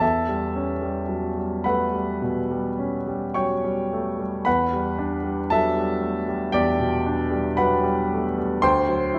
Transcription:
0.00 E2 A4 E5 A5
0.28 G3
0.56 C#4
0.82 G3
1.09 F#3
1.38 G3
1.64 A3 B4 F#5 B5
1.93 G3
2.22 B2
2.51 G3
2.79 C#4
3.07 G3
3.34 F#3 C#5 G5 C#6
3.64 G3
3.93 A3
4.19 G3
4.45 E2 B4 F#5 B5
4.73 G3
4.99 D4
5.24 G3
5.50 F#3 A4 E5 A5
5.77 G3
6.01 A3
6.28 G3
6.52 E2 G4 D5 G5
6.80 B2
7.06 D4
7.31 G3
7.57 F#3 B4 F#5 B5
7.83 G3
8.13 A3
8.38 G3
8.62 D2 C5 G5 C6
8.89 F#3
9.14 E4

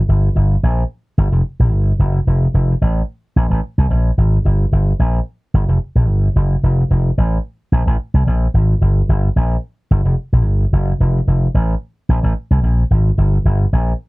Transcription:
0.09 G1
0.36 G1
0.63 A#1
1.18 G1
1.32 F1
1.59 A#1
1.72 G1
1.99 F#1
2.27 F1
2.54 F1
2.81 A1
3.36 A#1
3.50 A1
3.78 C2
3.91 A#1
4.18 G#1
4.45 G1
4.72 G1
4.99 A#1
5.54 G1
5.68 F1
5.95 A#1
6.08 G1
6.36 F#1
6.63 F1
6.90 F1
7.18 A1
7.72 A#1
7.87 A1
8.14 C2
8.27 A#1
8.54 G#1
8.81 G1
9.09 G1
9.36 A#1
9.91 G1
10.05 F1
10.33 A#1
10.45 G1
10.73 F#1
11.00 F1
11.27 F1
11.54 A1
12.09 A#1
12.23 A1
12.51 C2
12.63 A#1
12.91 G#1
13.18 G1
13.45 G1
13.73 A#1

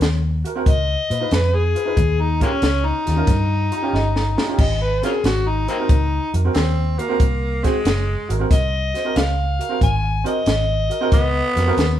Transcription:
0.00 D#2, snare, closed hi-hat
0.44 F#4 A#4, closed hi-hat
0.55 C4 F#4 A#4
0.66 C#2 D#5, kick, closed hi-hat
1.10 A#2 F4 B4, closed hi-hat
1.20 D#4 F4 B4
1.31 F2 B4, snare, closed hi-hat
1.55 G#4
1.75 F4 B4, closed hi-hat
1.85 D#4 F4 B4
1.97 D#2, kick, closed hi-hat
2.21 D#4
2.40 G#3 A#3 C#4 F4 G4, kick, closed hi-hat
2.62 C#2, snare, closed hi-hat
2.86 D#4
3.06 D#2 F4 G4, snare, closed hi-hat
3.16 C#4 F4 A#4
3.27 G2, kick, snare, closed hi-hat
3.71 F4 G4 A#5, closed hi-hat
3.82 C#4 F4 G4 G5
3.93 G1 D#5, snare
4.16 snare
4.37 F4 G4, snare
4.48 C#4 F4 G4
4.58 G#1 D#5, kick, crash
4.82 B4
5.02 C4 C#4 F4 F#4 G#4 A#4, snare, closed hi-hat
5.24 G#1 F#4, snare, closed hi-hat
5.48 D#4
5.68 A#3 C4 D#4 F#4 A#4, closed hi-hat
5.79 C4 F#4 A#4
5.89 C#2, kick, closed hi-hat
6.33 F2 F#4 A#4, closed hi-hat
6.45 C4 F#4 A#4
6.54 D#2 C4, snare, closed hi-hat
6.98 A#3 F#4 A#4, closed hi-hat
7.09 C4 F#4 A#4
7.20 C2, kick, closed hi-hat
7.63 G#3 C4 F#4 G#4, kick, snare, closed hi-hat
7.85 F#1, snare, closed hi-hat
8.29 G#1 F#4 A#4, closed hi-hat
8.39 C4 F#4 A#4
8.51 C2 D#5, kick, snare, closed hi-hat
8.94 F#4 C5, snare, closed hi-hat
9.04 C4 F#4 A#4
9.16 C#2 F5, snare, closed hi-hat
9.59 F#4 A#4, closed hi-hat
9.69 C4 F#4 A#4
9.81 G#1 G#5, kick, closed hi-hat
10.24 C4 F#4 A#4 D#5, closed hi-hat
10.46 G#1, snare, closed hi-hat
10.90 F#4 A#4, closed hi-hat
11.01 C4 F#4 A#4
11.12 C#2 B3, kick, snare, closed hi-hat
11.56 F2 F#4 A#4, snare, closed hi-hat
11.66 C4 F#4 A#4
11.77 D#2, snare, closed hi-hat

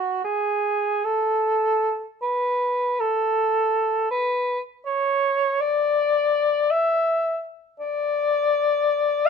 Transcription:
Already playing: F#4
0.25 G#4
1.05 A4
2.22 B4
3.00 A4
4.11 B4
4.86 C#5
5.61 D5
6.71 E5
7.80 D5
9.26 F5

